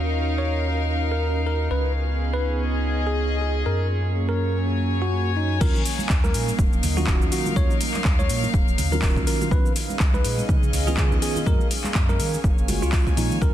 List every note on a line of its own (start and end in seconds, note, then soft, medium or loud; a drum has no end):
0.00 1.69 D#2 medium
0.00 1.67 C#4 medium
0.00 2.50 D#4 medium
0.00 1.67 F4 medium
0.00 1.67 F#4 medium
0.00 1.67 A#4 medium
0.00 2.50 A#4 medium
0.00 2.50 F5 medium
0.38 0.67 C#5 medium
1.12 1.40 A#4 medium
1.47 1.67 A#4 medium
1.71 3.64 C#2 medium
1.71 3.64 B3 medium
1.71 4.45 C#4 medium
1.71 3.64 D#4 medium
1.71 5.57 F4 medium
1.71 5.57 G#4 loud
1.71 1.91 B4 medium
2.04 4.45 G#4 medium
2.33 2.62 B4 medium
2.60 4.29 D#5 medium
3.07 3.35 G#4 medium
3.42 3.62 G#4 medium
3.66 5.59 F#2 medium
3.66 7.19 F#3 medium
3.66 5.59 A#3 medium
3.66 5.59 C#4 medium
3.66 3.86 A#4 medium
3.78 7.19 C#5 medium
4.29 4.57 A#4 medium
4.55 7.19 G#5 medium
5.02 5.31 F#4 medium
5.37 5.57 D#4 medium
5.61 5.70 D#2 loud
5.61 5.73 D#3 medium
5.61 5.73 F#3 medium
5.61 9.47 F#3 loud
5.61 9.48 A#3 medium
5.61 9.48 C#4 medium
5.61 5.73 C#4 medium
5.61 10.13 D#4 medium
5.61 5.73 F4 loud
5.61 5.81 A#4 loud
5.61 13.54 F5 medium
5.61 kick loud
5.61 crash loud
5.61 cabasa soft
5.75 cabasa soft
5.85 open hi-hat loud
5.85 cabasa medium
5.95 10.30 A#4 medium
5.99 high conga medium
5.99 cabasa soft
6.09 6.36 D#2 loud
6.09 kick loud
6.09 clap loud
6.09 cabasa soft
6.24 6.52 A#4 medium
6.24 high conga medium
6.24 cabasa soft
6.33 6.52 A#2 medium
6.33 10.30 F5 medium
6.33 open hi-hat loud
6.33 cabasa medium
6.48 high conga medium
6.48 cabasa soft
6.59 6.68 D#1 medium
6.59 kick loud
6.59 cabasa soft
6.72 6.80 D#1 medium
6.72 cabasa soft
6.83 7.07 D#2 medium
6.83 open hi-hat loud
6.83 low conga medium
6.83 cabasa medium
6.97 7.42 D#3 medium
6.97 7.42 F#3 medium
6.97 7.42 C#4 medium
6.97 7.43 F4 loud
6.97 7.26 F#4 medium
6.97 muted conga medium
6.97 cabasa soft
7.07 7.23 D#1 loud
7.07 kick loud
7.07 clap loud
7.07 cabasa soft
7.21 7.28 D#2 loud
7.21 cabasa soft
7.32 7.52 F#4 medium
7.32 open hi-hat loud
7.32 cabasa medium
7.45 7.54 D#3 medium
7.45 7.54 F#3 medium
7.45 7.54 C#4 medium
7.45 7.54 F4 loud
7.45 muted conga medium
7.45 high conga medium
7.45 cabasa soft
7.56 7.66 D#2 loud
7.56 7.68 F#3 medium
7.56 7.69 F4 loud
7.56 7.77 C#5 loud
7.56 kick loud
7.56 cabasa soft
7.71 cabasa soft
7.81 open hi-hat loud
7.81 muted conga medium
7.81 cabasa medium
7.94 clap soft
7.94 high conga medium
7.94 cabasa soft
8.04 8.31 D#2 medium
8.04 kick loud
8.04 clap loud
8.04 cabasa soft
8.19 8.48 C#5 loud
8.19 high conga medium
8.19 cabasa soft
8.29 8.47 A#2 medium
8.29 open hi-hat loud
8.29 cabasa medium
8.43 muted conga medium
8.43 high conga medium
8.43 cabasa soft
8.54 8.63 D#1 medium
8.54 kick loud
8.54 cabasa soft
8.68 8.75 D#1 medium
8.68 cabasa soft
8.78 9.02 D#2 medium
8.78 open hi-hat loud
8.78 low conga medium
8.78 cabasa medium
8.92 9.37 D#3 loud
8.92 9.37 F#3 medium
8.92 9.38 C#4 medium
8.92 9.38 F4 loud
8.92 9.21 A#4 loud
8.92 cabasa soft
9.02 9.18 D#1 medium
9.02 kick loud
9.02 clap loud
9.02 open hi-hat medium
9.02 cabasa soft
9.16 9.24 D#2 medium
9.16 kick medium
9.16 cabasa soft
9.27 9.47 A#4 medium
9.27 open hi-hat loud
9.27 cabasa medium
9.40 9.49 D#3 medium
9.40 9.49 F#3 medium
9.40 9.49 C#4 medium
9.40 9.49 F4 loud
9.40 muted conga medium
9.40 cabasa soft
9.51 9.61 C#2 loud
9.51 9.63 D#3 medium
9.51 9.63 B3 medium
9.51 11.44 B3 medium
9.51 12.13 C#4 medium
9.51 9.63 C#4 medium
9.51 11.45 D#4 medium
9.51 11.45 G#4 loud
9.51 9.72 B4 loud
9.51 kick loud
9.51 cabasa soft
9.66 cabasa soft
9.76 open hi-hat loud
9.76 cabasa medium
9.87 12.25 D#5 medium
9.87 high conga medium
9.87 cabasa soft
10.00 10.26 C#2 loud
10.00 kick loud
10.00 clap loud
10.00 cabasa soft
10.14 12.25 G#4 medium
10.14 10.43 B4 loud
10.14 high conga loud
10.14 cabasa soft
10.25 10.42 A#2 medium
10.25 open hi-hat loud
10.25 cabasa medium
10.37 high conga medium
10.37 cabasa soft
10.49 10.58 C#3 medium
10.49 kick loud
10.49 cabasa soft
10.63 10.70 C#3 medium
10.63 cabasa soft
10.73 10.97 C#2 medium
10.73 open hi-hat loud
10.73 low conga medium
10.73 cabasa medium
10.87 11.32 D#3 medium
10.87 11.33 B3 medium
10.87 11.33 C#4 medium
10.87 11.33 F4 loud
10.87 11.16 G#4 loud
10.87 muted conga medium
10.87 cabasa soft
10.97 11.13 C#3 medium
10.97 kick loud
10.97 clap loud
10.97 cabasa soft
11.11 11.19 C#2 loud
11.11 cabasa soft
11.22 11.42 G#4 medium
11.22 open hi-hat loud
11.22 cabasa medium
11.35 11.44 D#3 loud
11.35 11.44 B3 medium
11.35 11.44 C#4 medium
11.35 11.44 F4 loud
11.35 muted conga medium
11.35 high conga medium
11.35 cabasa soft
11.46 11.56 F#2 loud
11.46 11.58 F3 medium
11.46 11.58 G#3 medium
11.46 13.54 A#3 medium
11.46 11.59 A#3 medium
11.46 13.54 C#4 medium
11.46 11.59 F#4 loud
11.46 13.40 G#4 loud
11.46 11.67 A#4 loud
11.46 kick loud
11.46 cabasa soft
11.61 cabasa soft
11.71 open hi-hat loud
11.71 muted conga medium
11.71 cabasa medium
11.84 clap soft
11.84 high conga medium
11.84 cabasa soft
11.95 12.21 F#2 loud
11.95 kick loud
11.95 clap loud
11.95 cabasa soft
12.09 12.38 A#4 loud
12.09 high conga loud
12.09 cabasa soft
12.19 12.37 D#3 medium
12.19 13.54 C#5 medium
12.19 open hi-hat loud
12.19 cabasa medium
12.34 13.54 G#5 medium
12.34 muted conga medium
12.34 high conga medium
12.34 cabasa soft
12.44 12.53 F#1 medium
12.44 kick loud
12.44 cabasa soft
12.58 12.84 F#1 medium
12.58 cabasa soft
12.68 13.15 G#3 medium
12.68 13.15 A#3 medium
12.68 13.15 F4 medium
12.68 13.15 F#4 medium
12.68 open hi-hat loud
12.68 high conga medium
12.68 low conga medium
12.68 cabasa medium
12.82 13.12 C#2 loud
12.82 13.11 F4 medium
12.82 cabasa soft
12.92 kick loud
12.92 clap loud
12.92 open hi-hat medium
12.92 cabasa soft
13.07 kick medium
13.07 cabasa soft
13.17 13.33 A#2 medium
13.17 13.35 F3 medium
13.17 13.35 G#3 medium
13.17 13.35 A#3 medium
13.17 13.38 D#4 medium
13.17 13.35 F4 medium
13.17 open hi-hat loud
13.17 cabasa medium
13.31 13.38 D#3 medium
13.31 muted conga soft
13.31 cabasa soft
13.41 13.51 D#2 loud
13.41 13.53 D#3 medium
13.41 13.54 F#3 medium
13.41 13.54 F#3 loud
13.41 13.54 C#4 medium
13.41 13.54 D#4 medium
13.41 13.54 F4 loud
13.41 13.54 A#4 loud
13.41 kick loud
13.41 cabasa soft